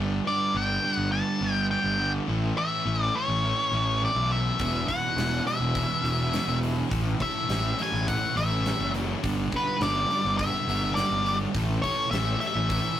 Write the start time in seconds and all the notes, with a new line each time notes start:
Already playing: G1 G2 D3 G3 B3 D4 G4
0.25 G2 D3 G3 B3 D4 G4 D5
0.54 G1 G2 D3 G3 B3 D4 G4 G5
0.83 G2 D3 G3 B3 D4 G4
0.95 G1 F#5
1.12 G2 D3 G3 B3 D4 G4 A5
1.40 G1 G2 D3 G3 B3 D4 G4
1.54 G5
1.70 G2 D3 G3 B3 D4 G4 G5
1.84 G1
1.99 G2 D3 G3 B3 D4 G4
2.28 A1 A2 E3 A3 C#4 E4
2.57 A2 E3 A3 C#4 E4 E5
2.85 A1 A2 E3 A3 C#4 E4
3.04 D5
3.15 A2 E3 A3 C#4 E4 C#5
3.28 A1
3.43 A2 E3 A3 C#4 E4
3.71 A1 A2 E3 A3 C#4 E4
4.01 A2 E3 A3 C#4 E4
4.05 D5
4.15 B1
4.30 A2 E3 A3 C#4 E4 E5
4.57 E1 E2 B2 E3 G#3 B3 E4, kick, open hi-hat
4.87 E2 B2 E3 G#3 B3 E4 F#5, kick, open hi-hat
5.16 E1 E2 B2 E3 G#3 B3 E4, snare, open hi-hat
5.45 E2 B2 E3 G#3 B3 E4 E5, open hi-hat
5.60 E1
5.73 E2 B2 E3 G#3 B3 E4, kick, open hi-hat
6.03 E1 E2 B2 E3 G#3 B3 E4, open hi-hat
6.32 E2 B2 E3 G#3 B3 E4, snare, open hi-hat
6.47 E1
6.61 E2 B2 E3 G#3 B3 E4, open hi-hat
6.91 A1 A2 E3 A3 C#4 E4, kick, open hi-hat
7.19 A2 E3 A3 C#4 E4 E5, kick, open hi-hat
7.49 A1 A2 E3 A3 C#4 E4, snare, open hi-hat
7.78 A2 E3 A3 C#4 E4, open hi-hat
7.83 G#5
7.92 A1, snare
8.07 A2 E3 A3 C#4 E4 F#5, kick, open hi-hat
8.35 A1 A2 E3 A3 C#4 E4 E5, open hi-hat
8.65 A2 E3 A3 C#4 E4, snare, open hi-hat
8.79 F#1
8.93 A2 E3 A3 C#4 E4, open hi-hat
9.21 G1 G2 D3 G3 B3 D4 G4, kick, open hi-hat
9.51 G2 D3 G3 B3 D4 G4, kick, open hi-hat
9.56 B4
9.80 G1 G2 D3 G3 B3 D4 G4 D5, snare, open hi-hat
10.10 G2 D3 G3 B3 D4 G4, open hi-hat
10.24 G1, snare
10.38 G2 D3 G3 B3 D4 G4 E5, kick, open hi-hat
10.67 G1 G2 D3 G3 B3 D4 G4, open hi-hat
10.95 G2 D3 G3 D5, snare, open hi-hat
10.99 B3 D4 G4
11.10 G1
11.26 G2 D3 G3 B3 D4 G4, open hi-hat
11.55 A1 A2 E3 A3 C#4 A4, kick, open hi-hat
11.82 A2 E3 A3 C#5, kick, open hi-hat
11.86 C#4 A4
12.11 A1 A2 E3 A3 C#4 A4 E5, snare, open hi-hat
12.40 A2 E3 A3 C#4 A4 E5, open hi-hat
12.55 A1
12.69 A2 E3 A3 C#4 A4, kick, open hi-hat